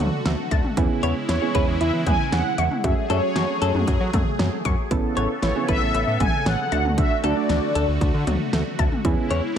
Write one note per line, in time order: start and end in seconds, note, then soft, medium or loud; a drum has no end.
0.00 0.75 D3 medium
0.00 0.21 F#3 medium
0.00 0.75 A3 medium
0.00 0.75 F#4 medium
0.00 closed hi-hat medium
0.00 mid tom loud
0.25 0.36 D2 loud
0.25 0.47 A3 medium
0.25 snare loud
0.25 closed hi-hat medium
0.51 0.62 D2 loud
0.51 0.73 A5 loud
0.51 kick medium
0.51 closed hi-hat medium
0.51 cowbell medium
0.64 mid tom medium
0.77 0.87 E2 loud
0.77 2.82 C#3 medium
0.77 0.99 E3 medium
0.77 2.82 G#3 medium
0.77 1.17 B3 medium
0.77 1.17 C#4 medium
0.77 2.82 E4 medium
0.77 1.17 E4 medium
0.77 1.17 G#4 loud
0.77 kick loud
0.77 closed hi-hat medium
1.03 1.13 E2 loud
1.03 1.25 B3 medium
1.03 1.14 C#5 medium
1.03 closed hi-hat medium
1.29 1.39 E2 loud
1.29 1.50 E3 medium
1.29 1.82 C#5 loud
1.29 snare loud
1.29 closed hi-hat loud
1.42 1.50 B3 medium
1.42 1.50 C#4 medium
1.42 1.50 E4 medium
1.42 1.50 G#4 medium
1.55 1.65 E2 loud
1.55 1.76 E3 medium
1.55 2.18 B3 medium
1.55 2.18 C#4 medium
1.55 2.18 E4 medium
1.55 2.18 G#4 medium
1.55 1.65 B4 medium
1.55 kick loud
1.55 closed hi-hat medium
1.68 1.78 E2 loud
1.81 1.91 E2 loud
1.81 2.02 E3 medium
1.81 1.92 E5 loud
1.81 closed hi-hat medium
1.94 2.04 E3 loud
2.06 2.17 E2 loud
2.06 2.28 B3 medium
2.06 2.33 G#5 loud
2.06 kick medium
2.06 closed hi-hat medium
2.06 mid tom loud
2.32 2.43 E2 loud
2.32 2.54 C#4 medium
2.32 2.80 F#5 loud
2.32 snare loud
2.32 closed hi-hat medium
2.58 2.68 E2 medium
2.58 2.80 C#6 loud
2.58 closed hi-hat medium
2.58 cowbell medium
2.71 mid tom medium
2.84 2.94 F#2 loud
2.84 4.89 F#3 medium
2.84 3.06 F#3 loud
2.84 3.00 A3 medium
2.84 4.89 A3 medium
2.84 3.00 C#4 medium
2.84 3.00 F#4 medium
2.84 3.00 G#4 medium
2.84 4.89 G#4 medium
2.84 2.93 E5 loud
2.84 kick loud
2.84 closed hi-hat medium
3.03 3.10 D5 medium
3.10 3.20 F#2 loud
3.10 3.18 A3 medium
3.10 3.31 A3 medium
3.10 3.18 C#4 medium
3.10 3.18 F#4 medium
3.10 3.18 G#4 medium
3.10 3.21 A4 medium
3.10 4.09 C#5 medium
3.10 closed hi-hat medium
3.10 cowbell medium
3.23 3.86 A3 medium
3.23 3.86 C#4 medium
3.23 3.86 F#4 medium
3.23 3.86 G#4 medium
3.36 3.46 F#2 loud
3.36 3.57 F#3 medium
3.36 snare loud
3.36 closed hi-hat loud
3.62 3.72 F#2 loud
3.62 3.83 F#3 medium
3.62 3.72 A4 medium
3.62 closed hi-hat medium
3.75 3.85 F#2 loud
3.75 mid tom medium
3.87 3.98 F#2 loud
3.87 4.09 F#3 medium
3.87 kick loud
3.87 closed hi-hat medium
4.00 4.11 F#3 loud
4.13 4.24 F#2 loud
4.13 4.35 A3 medium
4.13 kick medium
4.13 closed hi-hat medium
4.13 mid tom loud
4.39 4.49 F#2 loud
4.39 4.61 C#4 medium
4.39 snare loud
4.39 closed hi-hat medium
4.65 4.75 F#2 loud
4.65 4.87 C#6 medium
4.65 kick loud
4.65 closed hi-hat medium
4.91 5.01 A1 loud
4.91 6.70 C#3 medium
4.91 5.12 E3 medium
4.91 5.30 B3 loud
4.91 6.70 B3 medium
4.91 5.30 C#4 medium
4.91 5.30 E4 medium
4.91 5.30 A4 loud
4.91 6.70 A4 medium
4.91 kick loud
4.91 closed hi-hat medium
5.17 5.27 A1 loud
5.17 5.38 B3 medium
5.17 5.27 C#5 medium
5.17 closed hi-hat medium
5.42 5.53 A1 medium
5.42 5.64 E3 medium
5.42 5.69 C#5 medium
5.42 snare loud
5.42 closed hi-hat loud
5.56 5.64 B3 medium
5.56 5.64 C#4 medium
5.56 5.64 E4 medium
5.56 5.64 G#4 medium
5.68 5.79 A1 loud
5.68 5.90 E3 medium
5.68 6.32 B3 medium
5.68 6.32 C#4 medium
5.68 6.32 E4 medium
5.68 6.32 A4 medium
5.68 5.79 B4 medium
5.68 6.22 E5 loud
5.68 kick loud
5.68 closed hi-hat medium
5.82 5.92 A1 loud
5.94 6.05 A1 loud
5.94 6.16 E3 medium
5.94 closed hi-hat medium
6.07 6.18 A2 loud
6.20 6.31 A1 loud
6.20 6.42 B3 medium
6.20 6.47 G#5 loud
6.20 kick loud
6.20 closed hi-hat medium
6.20 mid tom loud
6.46 6.56 A1 loud
6.46 6.68 C#4 medium
6.46 6.99 F#5 loud
6.46 snare loud
6.46 closed hi-hat medium
6.72 7.03 D2 loud
6.72 9.02 D3 medium
6.72 9.02 A3 medium
6.72 7.13 A3 medium
6.72 7.13 D4 medium
6.72 9.02 F#4 loud
6.72 7.13 F#4 medium
6.72 7.13 A4 medium
6.72 6.93 A5 medium
6.72 closed hi-hat medium
6.72 cowbell medium
6.85 mid tom medium
6.98 7.19 D3 medium
6.98 7.25 E5 loud
6.98 kick loud
6.98 closed hi-hat medium
7.24 7.34 D2 loud
7.24 7.45 F#3 medium
7.24 7.32 A3 medium
7.24 7.32 D4 medium
7.24 7.32 F#4 medium
7.24 7.32 A4 medium
7.24 7.34 A4 medium
7.24 8.23 D5 loud
7.24 closed hi-hat medium
7.37 8.00 A3 medium
7.37 8.00 D4 medium
7.37 8.00 F#4 medium
7.37 8.00 A4 medium
7.49 7.60 D2 loud
7.49 7.71 D3 medium
7.49 snare loud
7.49 closed hi-hat loud
7.75 7.86 D2 loud
7.75 7.97 D3 medium
7.75 7.86 A4 medium
7.75 closed hi-hat medium
7.88 7.99 D2 loud
8.01 8.11 D2 loud
8.01 8.23 D3 medium
8.01 kick loud
8.01 closed hi-hat medium
8.14 8.24 D3 loud
8.27 8.37 D2 loud
8.27 8.49 F#3 medium
8.27 closed hi-hat medium
8.27 mid tom loud
8.53 8.63 D2 loud
8.53 8.75 A3 medium
8.53 snare loud
8.53 closed hi-hat medium
8.79 8.89 D2 loud
8.79 9.00 A5 loud
8.79 kick medium
8.79 closed hi-hat medium
8.79 cowbell medium
8.92 mid tom medium
9.05 9.15 E2 loud
9.05 9.58 C#3 medium
9.05 9.26 E3 loud
9.05 9.58 G#3 medium
9.05 9.44 B3 loud
9.05 9.44 C#4 medium
9.05 9.58 E4 loud
9.05 9.44 E4 medium
9.05 9.44 G#4 loud
9.05 kick loud
9.05 closed hi-hat medium
9.30 9.41 E2 loud
9.30 9.52 B3 medium
9.30 9.41 C#5 medium
9.30 closed hi-hat medium